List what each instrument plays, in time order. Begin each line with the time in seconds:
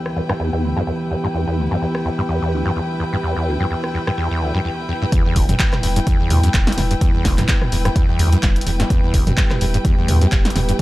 Already playing: analog synth pad E3 B3 G4, string section E4 B4 G5
0.06 cross-stick
0.16 acid bass E2
0.29 acid bass G2, cross-stick
0.40 acid bass E2
0.53 acid bass E2
0.63 acid bass D2
0.77 acid bass F#2
0.87 acid bass E2
1.11 acid bass E2
1.24 acid bass G2
1.34 acid bass E2
1.47 acid bass E2
1.58 acid bass D2
1.71 acid bass F#2
1.82 acid bass E2
1.95 cross-stick
2.05 acid bass E2
2.18 acid bass G2
2.29 acid bass E2
2.42 acid bass E2
2.53 acid bass D2
2.66 acid bass F#2
2.76 acid bass E2
3.00 acid bass E2
3.13 acid bass G2
3.23 acid bass E2
3.36 acid bass E2
3.47 acid bass D2
3.60 acid bass F#2
3.71 acid bass E2
3.84 cross-stick
3.94 acid bass E2
4.07 acid bass G2, cross-stick
4.18 acid bass E2
4.31 acid bass E2
4.41 acid bass D2
4.55 acid bass F#2
4.65 acid bass E2
4.89 acid bass E2
5.02 acid bass G2
5.12 acid bass E2, analog synth pad G3 B3 E4, kick, closed hi-hat
5.25 acid bass E2
5.36 analog synth bass E1, acid bass D2, kick, open hi-hat
5.49 acid bass F#2, closed hi-hat, mid tom
5.59 acid bass E2, kick, clap, closed hi-hat
5.73 cross-stick, clap, mid tom
5.83 analog synth bass E1, acid bass E2, open hi-hat
5.96 acid bass G2, closed hi-hat
6.07 acid bass E2, kick, closed hi-hat
6.20 acid bass E2
6.30 acid bass D2, analog synth bass E2, mid tom, open hi-hat
6.44 acid bass F#2, closed hi-hat
6.54 analog synth bass E1, acid bass E2, kick, clap, closed hi-hat
6.67 snare, closed hi-hat
6.72 closed hi-hat
6.78 analog synth bass E1, acid bass E2, snare, mid tom, open hi-hat
6.91 acid bass G2, closed hi-hat
7.01 acid bass E2, kick, closed hi-hat
7.14 acid bass E2
7.25 analog synth bass E1, acid bass D2, kick, snare, open hi-hat
7.38 acid bass F#2, clap, closed hi-hat, mid tom
7.48 acid bass E2, kick, clap, closed hi-hat
7.62 cross-stick, mid tom
7.72 analog synth bass E1, acid bass E2, open hi-hat
7.85 acid bass G2, cross-stick, closed hi-hat
7.96 acid bass E2, kick, closed hi-hat
8.09 acid bass E2
8.19 acid bass D2, analog synth bass E2, open hi-hat
8.33 acid bass F#2, closed hi-hat
8.43 analog synth bass E1, acid bass E2, kick, snare, clap, closed hi-hat
8.56 closed hi-hat
8.61 closed hi-hat
8.67 analog synth bass E1, acid bass E2, open hi-hat
8.80 acid bass G2, snare, closed hi-hat
8.90 acid bass E2, analog synth pad G4, kick, closed hi-hat
9.03 acid bass E2
9.14 analog synth bass E1, acid bass D2, kick, open hi-hat
9.27 acid bass F#2, closed hi-hat, mid tom
9.37 acid bass E2, kick, clap, closed hi-hat
9.51 cross-stick, clap, mid tom
9.61 analog synth bass E1, acid bass E2, open hi-hat
9.74 acid bass G2, closed hi-hat
9.85 acid bass E2, kick, closed hi-hat
9.98 acid bass E2
10.08 acid bass D2, analog synth bass E2, mid tom, open hi-hat
10.21 acid bass F#2, closed hi-hat
10.32 analog synth bass E1, acid bass E2, kick, clap, closed hi-hat
10.45 snare, closed hi-hat
10.50 closed hi-hat
10.56 analog synth bass E1, acid bass E2, snare, mid tom, open hi-hat
10.69 acid bass G2, closed hi-hat